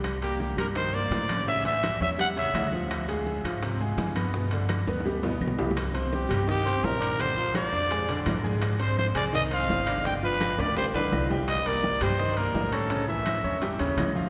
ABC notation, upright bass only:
X:1
M:4/4
L:1/8
Q:1/4=168
K:Gphr
V:1 name="Upright bass" clef=bass
C,,3 G,,3 =A,,2- | =A,,3 =E,,3 D,,2- | D,,3 A,,3 G,,2- | G,,3 D,,3 C,,2- |
C,,3 G,,3 B,,,2- | B,,,3 F,,3 A,,2- | A,,3 C,,3 G,,,2- | G,,,3 D,,2 D,, C,,2- |
C,,3 G,,3 =A,,2- | =A,,3 =E,,2 _E,, D,,2 |]